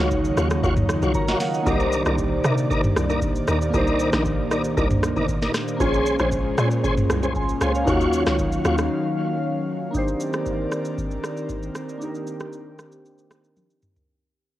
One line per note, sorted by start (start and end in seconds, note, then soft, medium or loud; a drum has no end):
0.00 0.35 C#2 loud
0.00 1.65 C#3 medium
0.00 1.65 D#3 medium
0.00 1.65 F#3 medium
0.00 1.61 A#3 medium
0.00 1.62 D#4 medium
0.00 1.65 D#4 medium
0.00 1.63 F4 medium
0.00 1.64 F#4 medium
0.00 1.14 C#5 medium
0.11 kick medium
0.11 shaker medium
0.25 shaker medium
0.37 0.62 D#2 loud
0.37 0.48 F4 medium
0.37 0.48 F#4 medium
0.37 0.49 C#5 medium
0.37 cross-stick medium
0.37 shaker medium
0.50 cross-stick loud
0.50 shaker medium
0.63 1.00 D#2 loud
0.63 0.74 F4 medium
0.63 0.74 F#4 medium
0.63 0.74 C#5 loud
0.63 kick loud
0.63 shaker medium
0.77 mid tom medium
0.77 shaker soft
0.89 cross-stick loud
0.89 shaker loud
1.02 1.14 C2 medium
1.02 1.13 F4 medium
1.02 1.13 F#4 medium
1.02 1.13 C#5 medium
1.02 shaker medium
1.15 1.28 A#4 medium
1.15 1.28 C#5 medium
1.15 1.39 A#5 medium
1.15 kick medium
1.15 shaker medium
1.28 1.39 F4 medium
1.28 1.39 F#4 medium
1.28 1.39 C#5 medium
1.28 1.41 D#5 medium
1.28 1.40 F#5 medium
1.28 snare medium
1.28 shaker medium
1.41 1.54 C#5 medium
1.41 1.54 F5 medium
1.41 1.53 F#5 medium
1.41 snare medium
1.41 open hi-hat medium
1.41 shaker loud
1.54 1.79 D#5 medium
1.54 1.79 F#5 medium
1.54 shaker medium
1.63 2.03 C2 loud
1.63 7.83 A#2 medium
1.63 5.77 D#3 medium
1.63 3.68 A#3 medium
1.63 7.83 A#3 medium
1.63 3.69 D4 medium
1.63 2.03 D#4 medium
1.63 3.70 D#4 medium
1.63 2.03 A#4 medium
1.63 5.77 D5 medium
1.63 kick loud
1.63 shaker medium
1.67 3.71 G4 medium
1.67 3.72 C5 medium
1.67 2.03 D5 loud
1.80 shaker medium
1.93 shaker loud
2.06 2.42 C2 loud
2.06 2.16 D#4 medium
2.06 2.16 A#4 medium
2.06 2.16 D5 medium
2.06 cross-stick medium
2.06 shaker soft
2.18 kick medium
2.18 shaker medium
2.44 2.81 C3 loud
2.44 2.55 D#4 medium
2.44 2.55 A#4 medium
2.44 2.55 D5 medium
2.44 cross-stick loud
2.44 shaker medium
2.57 shaker medium
2.70 2.81 D#4 loud
2.70 2.81 A#4 medium
2.70 2.81 D5 loud
2.70 kick loud
2.70 shaker medium
2.84 mid tom medium
2.84 shaker medium
2.96 3.44 C2 loud
2.96 cross-stick loud
2.96 shaker loud
3.09 3.19 D#4 medium
3.09 3.20 A#4 medium
3.09 3.20 D5 medium
3.09 shaker medium
3.22 kick loud
3.22 shaker medium
3.35 shaker medium
3.47 3.72 D#2 medium
3.47 3.59 D#4 medium
3.47 3.59 A#4 medium
3.47 3.59 D5 medium
3.47 cross-stick medium
3.47 shaker loud
3.61 shaker medium
3.70 4.10 C2 loud
3.70 5.75 A#3 medium
3.70 5.76 D4 medium
3.70 4.10 D#4 medium
3.70 5.77 D#4 medium
3.70 4.10 A#4 medium
3.70 kick loud
3.70 shaker medium
3.74 5.78 G4 medium
3.74 5.79 C5 medium
3.74 4.10 D5 loud
3.87 shaker medium
3.99 shaker loud
4.12 4.53 A#1 loud
4.12 4.23 D#4 medium
4.12 4.23 A#4 medium
4.12 4.23 D5 medium
4.12 cross-stick loud
4.12 snare medium
4.12 shaker soft
4.25 kick medium
4.25 shaker medium
4.51 4.75 C2 loud
4.51 4.62 D#4 medium
4.51 4.62 A#4 medium
4.51 4.62 D5 medium
4.51 cross-stick medium
4.51 shaker medium
4.64 shaker medium
4.77 5.14 C2 loud
4.77 4.88 D#4 loud
4.77 4.88 A#4 medium
4.77 4.88 D5 loud
4.77 kick loud
4.77 shaker medium
4.90 mid tom medium
4.90 shaker soft
5.03 cross-stick loud
5.03 shaker loud
5.16 5.28 G1 medium
5.16 5.26 D#4 medium
5.16 5.27 A#4 medium
5.16 5.27 D5 medium
5.16 shaker medium
5.29 kick medium
5.29 shaker medium
5.42 5.52 D#4 medium
5.42 5.52 A#4 medium
5.42 5.53 D5 medium
5.42 snare medium
5.42 shaker medium
5.54 cross-stick medium
5.54 snare medium
5.54 shaker medium
5.68 shaker medium
5.77 6.17 A#1 loud
5.77 7.85 G#3 medium
5.77 7.31 A#3 medium
5.77 7.32 C#4 medium
5.77 6.17 C#4 medium
5.77 9.90 C#4 medium
5.77 7.33 F4 medium
5.77 6.17 G#4 medium
5.77 kick loud
5.77 shaker medium
5.81 7.34 G#4 medium
5.81 6.17 C5 loud
5.81 7.35 C5 medium
5.94 shaker medium
6.06 shaker loud
6.19 6.56 A#1 loud
6.19 6.30 C#4 medium
6.19 6.30 G#4 medium
6.19 6.30 C5 medium
6.19 cross-stick medium
6.19 shaker soft
6.32 kick medium
6.32 shaker medium
6.58 6.95 A#2 loud
6.58 6.69 C#4 medium
6.58 6.69 G#4 medium
6.58 6.69 C5 medium
6.58 cross-stick loud
6.58 shaker medium
6.71 shaker medium
6.84 6.95 C#4 medium
6.84 6.95 G#4 medium
6.84 6.95 C5 loud
6.84 kick loud
6.84 shaker medium
6.97 mid tom medium
6.97 shaker soft
7.10 7.58 C2 medium
7.10 cross-stick loud
7.10 shaker loud
7.23 7.33 C#4 medium
7.23 7.33 G#4 medium
7.23 7.34 C5 medium
7.23 shaker medium
7.35 7.61 G#5 medium
7.35 7.60 C6 medium
7.35 kick medium
7.35 shaker medium
7.49 shaker medium
7.61 7.86 C#2 loud
7.61 7.72 C#4 medium
7.61 7.72 G#4 medium
7.61 7.73 C5 medium
7.61 7.74 F5 medium
7.61 7.74 G#5 medium
7.61 cross-stick loud
7.61 shaker loud
7.75 7.90 C#5 medium
7.75 8.00 F5 medium
7.75 shaker medium
7.84 8.24 D#2 loud
7.84 9.92 D#3 medium
7.84 9.92 F#3 medium
7.84 9.89 A#3 medium
7.84 9.90 D#4 medium
7.84 8.23 F4 loud
7.84 9.90 F4 medium
7.84 8.24 F#4 medium
7.84 8.24 C#5 loud
7.84 9.92 F5 medium
7.84 kick loud
7.84 shaker medium
7.90 9.91 F#4 medium
7.90 9.92 C#5 medium
8.01 shaker medium
8.13 shaker loud
8.26 8.63 C#2 medium
8.26 8.37 F4 medium
8.26 8.37 F#4 medium
8.26 8.37 C#5 medium
8.26 cross-stick medium
8.26 snare medium
8.26 shaker soft
8.39 kick medium
8.39 shaker medium
8.52 shaker medium
8.65 8.89 D#2 medium
8.65 8.76 F4 medium
8.65 8.76 F#4 medium
8.65 8.76 C#5 medium
8.65 cross-stick loud
8.65 shaker medium
8.78 cross-stick loud
8.78 shaker medium
9.91 14.04 D#3 medium
9.91 11.95 A#3 medium
9.91 14.04 C4 medium
9.91 11.96 D4 medium
9.91 11.97 D#4 medium
9.91 14.04 A#4 medium
9.91 11.99 D5 medium
9.91 kick loud
9.91 shaker medium
9.96 11.98 G4 medium
9.96 11.99 C5 medium
10.08 shaker medium
10.20 shaker loud
10.33 cross-stick medium
10.33 shaker soft
10.46 kick medium
10.46 shaker medium
10.72 cross-stick medium
10.72 shaker medium
10.85 shaker medium
10.98 kick loud
10.98 shaker medium
11.11 shaker soft
11.24 cross-stick loud
11.24 shaker loud
11.37 shaker medium
11.49 kick medium
11.49 shaker medium
11.63 shaker medium
11.75 cross-stick medium
11.75 shaker medium
11.89 shaker medium
11.98 14.02 A#3 medium
11.98 14.03 D4 medium
11.98 14.04 D#4 medium
11.98 14.06 G4 medium
11.98 shaker medium
12.03 14.05 G4 medium
12.03 14.06 A#4 medium
12.15 shaker medium
12.27 shaker loud
12.40 cross-stick medium
12.40 shaker soft
12.53 shaker medium
12.79 cross-stick medium
12.79 shaker medium
12.92 shaker medium
13.05 shaker medium
13.18 shaker soft
13.31 cross-stick loud
13.31 shaker medium
13.44 shaker medium
13.56 high tom medium
13.56 shaker medium
13.70 shaker soft
13.82 mid tom medium
13.82 shaker medium
13.96 floor tom medium
13.96 shaker medium